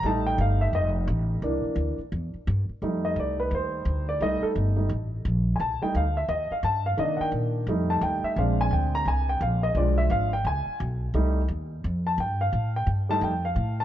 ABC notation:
X:1
M:4/4
L:1/8
Q:"Swing" 1/4=173
K:Fmix
V:1 name="Upright piano"
a g f =e _e z3 | z8 | z e d =B c3 d | e A z6 |
[_a=a] g f =e _e f a f | e [_g=g] z3 a g =e | f _a g b a g f e | d =e f g ^g2 z2 |
z4 z a g f- | f g z a g f2 a |]
V:2 name="Upright piano"
[G,A,E]8 | [=E,B,D]3 z4 z | [G,A,E]8 | [G,A,E]3 [G,A,E] z4 |
z [G,A,E] z6 | [E,B,D]4 [G,A,E]4 | [_A,CD]8 | [F,^G,D]3 z4 z |
[G,A,E] z6 z | z3 [G,A,E] z4 |]
V:3 name="Upright bass" clef=bass
A,,,2 G,,,2 F,,,2 A,,,2 | C,, z D,, z =E,, z G,, z | F,,2 C,,2 E,,2 D,,2 | C,, z G,,,2 A,,,2 B,,,2 |
C,, z D,,2 E,, z G,,2 | C, z B,,2 F,,2 E,, z | B,,,2 D,,2 C,,2 B,,,2 | =B,,,2 ^G,,,2 _D,, z B,,,2 |
C,,2 E,,2 F,,2 G,,2 | A,,2 G,,2 F,,2 A,,2 |]